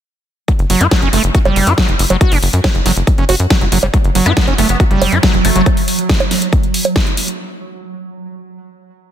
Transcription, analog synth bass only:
0.59 F#1
0.70 F#1
0.81 F#2
1.02 F#1
1.13 F#1
1.24 F#1
1.45 F#1
1.56 F#1
1.67 F#2
1.89 F#1
1.99 F#1
2.10 F#1
2.32 F#1
2.43 F#1
2.53 F#2
2.75 F#1
2.86 F#1
2.96 F#1
3.18 F#1
3.29 F#1
3.40 F#2
3.61 F#1
3.72 F#1
3.83 F#1
4.04 F#1
4.15 F#1
4.26 F#2
4.48 F#1
4.58 F#1
4.69 F#1
4.91 F#1
5.01 F#1
5.12 F#2
5.34 F#1
5.45 F#1
5.55 F#1

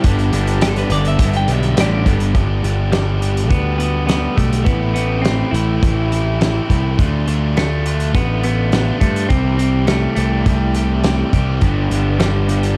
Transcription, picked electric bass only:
0.04 G1
0.32 G1
0.90 G1
1.19 G1
1.48 B1
1.77 A1
2.06 G1
2.35 G1
2.63 G1
3.50 D2
4.38 B1
4.66 A1
5.53 A1
5.83 A1
6.70 C2
6.99 D2
7.27 D2
8.15 A1
9.01 G2
9.30 C2
10.17 C2
10.46 C2
11.33 C2
11.62 G1
11.90 G1

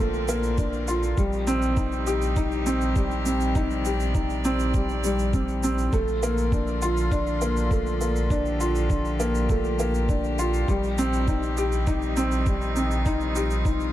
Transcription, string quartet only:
Already playing: D3 F3 C4 F4 A4
1.17 C3 D#3 G3 D#4 G4
3.55 D5
5.93 D3 F3 F4 A4
8.31 G4
10.69 C3 D#3 G3 D#4
13.07 F4

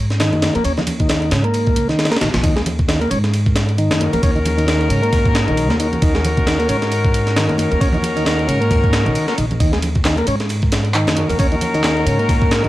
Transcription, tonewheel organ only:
0.20 D#3
0.55 A#3
0.65 C#4
0.78 D#3
1.00 D#3
1.10 D#3
1.32 C#3
1.44 A#3
1.89 D#3
2.11 A#3
2.21 D#3
2.43 D#3
2.56 G#3
2.88 D#3
3.01 A#3
3.11 C#4
3.78 D#3
4.13 A#3
4.23 C#4
4.35 D#3
4.57 D#3
4.67 D#3
4.89 C#3
5.03 A#3
5.47 D#3
5.70 A#3
5.80 D#3
6.02 D#3
6.15 G#3
6.47 D#3
6.59 A#3
6.69 C#4
7.36 D#3
7.71 A#3
7.81 C#4
7.94 D#3
8.16 D#3
8.25 D#3
8.48 C#3
8.61 A#3
9.06 D#3
9.28 A#3
9.38 D#3
9.60 D#3
9.73 G#3
10.05 D#3
10.18 A#3
10.28 C#4
10.95 D#3
11.30 A#3
11.39 C#4
11.52 D#3
11.75 D#3
11.84 D#3
12.07 C#3
12.19 A#3
12.64 D#3

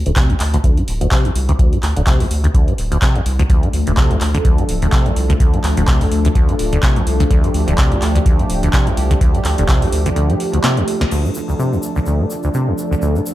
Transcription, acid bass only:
0.06 D2
0.16 C3
0.30 D2
0.53 D2
0.64 D2
0.77 A2
1.01 D2
1.12 C3
1.25 D2
1.49 D2
1.59 D2
1.72 A2
1.96 D2
2.07 C3
2.20 D2
2.44 D2
2.54 D2
2.68 A2
2.92 D2
3.02 C3
3.15 D2
3.39 D2
3.50 D2
3.63 A2
3.87 D2
3.97 C3
4.11 D2
4.34 D2
4.45 D2
4.58 A2
4.82 D2
4.92 C3
5.06 D2
5.30 D2
5.40 D2
5.53 A2
5.77 D2
5.88 C3
6.01 D2
6.25 D2
6.35 D2
6.49 A2
6.73 D2
6.83 C3
6.96 D2
7.20 D2
7.30 D2
7.44 A2
7.68 D2
7.78 C3
7.92 D2
8.15 D2
8.26 D2
8.39 A2
8.63 D2
8.73 C3
8.87 D2
9.11 D2
9.21 D2
9.34 A2
9.58 D2
9.69 C3
9.82 D2
10.06 D2
10.16 D2
10.30 A2
10.53 D2
10.64 C3
10.77 D2
11.01 D2
11.11 D2
11.25 A2
11.49 D2
11.59 C3
11.72 D2
11.96 D2
12.07 D2
12.20 A2
12.44 D2
12.54 C3
12.68 D2
12.91 D2
13.02 D2
13.15 A2

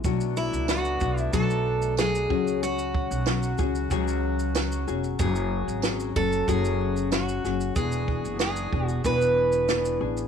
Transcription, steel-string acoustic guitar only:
0.37 E4
0.69 F#4
1.19 E4
1.33 A4
1.99 G#4
2.63 F#4
5.19 G#4
6.16 A4
6.49 G#4
7.12 F#4
7.76 G#4
8.41 G#4
8.87 F#4
9.06 B4

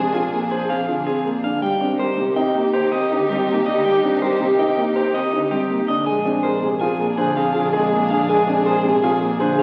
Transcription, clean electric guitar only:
0.14 G#5
0.51 G#4
0.70 F5
1.07 G#4
1.44 F5
1.62 G5
1.99 C5
2.36 G5
2.73 G4
2.92 D#5
3.29 G4
3.66 D#5
3.84 G5
4.22 C5
4.59 G5
4.96 G4
5.14 D#5
5.51 G4
5.88 D#5
6.06 G#5
6.43 C5
6.81 G#5
7.18 G#4
7.37 F5
7.73 G#4
8.10 F5
8.29 G#5
8.66 C5
9.03 G#5
9.40 G#4
9.59 F5

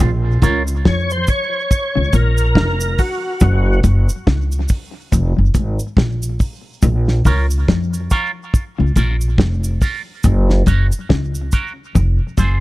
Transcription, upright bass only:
0.00 A#1
0.43 C#2
0.86 F2
1.97 C#2
2.14 A#1
2.56 F1
3.42 F#1
3.84 F#1
4.28 C#2
5.13 F1
5.38 F#1
5.55 G#1
5.97 A#1
6.83 A#1
7.26 C#2
7.69 F2
8.80 C#2
8.97 A#1
9.39 F1
10.25 F#1
10.67 F#1
11.11 C#2
11.96 F1
12.38 F#1

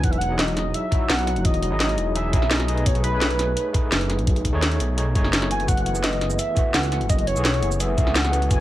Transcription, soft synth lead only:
0.04 F#5
0.11 E5
0.18 F#5
0.39 D#5
0.74 E5
1.10 F#5
1.45 D#5
1.62 D#5
2.16 E5
2.51 D#5
2.86 C#5
3.04 B4
5.51 G#5
5.68 F#5
6.04 D#5
6.39 E5
6.74 F#5
7.09 D#5
7.27 C#5
7.80 E5
8.15 F#5
8.51 G#5

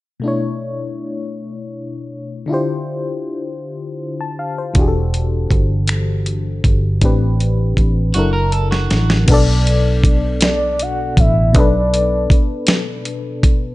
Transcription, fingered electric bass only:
4.76 E1
5.51 G1
6.65 G1
7.03 A1
7.78 A1
8.16 F#1
8.92 A1
9.29 B1
11.18 A1
11.55 B1
12.31 muted fingered electric bass stroke

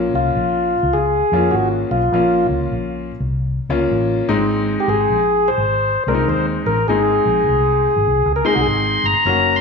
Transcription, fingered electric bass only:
0.14 C2
0.35 A#1
0.83 C#2
1.32 F2
1.53 G#1
1.91 B1
2.12 A#1
2.49 C#2
2.71 A#1
3.20 C2
3.69 C#2
3.91 A1
4.29 G#1
4.88 G#1
5.10 A#1
5.58 G#1
6.07 C2
6.27 D#2
6.66 A1
6.88 G#1
7.25 A#1
7.48 C2
7.96 G#1
8.07 C2
8.26 C#2
8.56 C2
8.66 G#1
9.04 G1
9.25 F#1

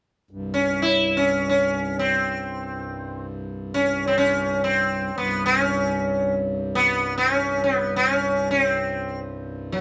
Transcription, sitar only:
0.54 C#4
0.82 E4
1.17 C#4
1.49 C#4
1.99 C4
3.74 C#4
4.07 C4
4.18 C#4
4.64 C4
5.18 B3
5.46 C#4
6.75 B3
7.18 C#4
7.64 B3
7.96 C#4
8.51 C#4
8.62 C4
9.72 F#3

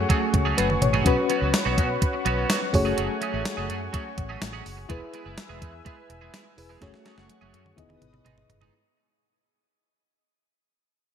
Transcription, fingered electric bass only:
0.34 C#2
0.58 F#1
0.82 A1
1.06 B1
1.42 C#2
1.66 B1
1.78 B2
2.26 B1
2.74 F#1
2.98 F#1
3.34 A1
3.58 F#1
3.70 F#2
4.18 A1
4.42 A1
4.66 F#1
4.90 E1
5.26 F#1
5.50 E1
5.62 E2
6.10 E1
6.58 E1
6.82 F#1
7.18 F#1
7.42 F#1
7.54 F#2
7.78 E1
8.02 G#1
8.26 G#1
8.50 F#1

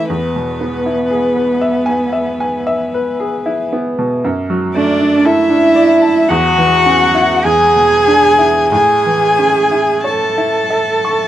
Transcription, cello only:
Already playing: E4
0.10 B3
4.75 D4
5.25 E4
6.29 F#4
7.45 G#4
8.73 G#4
10.05 A4

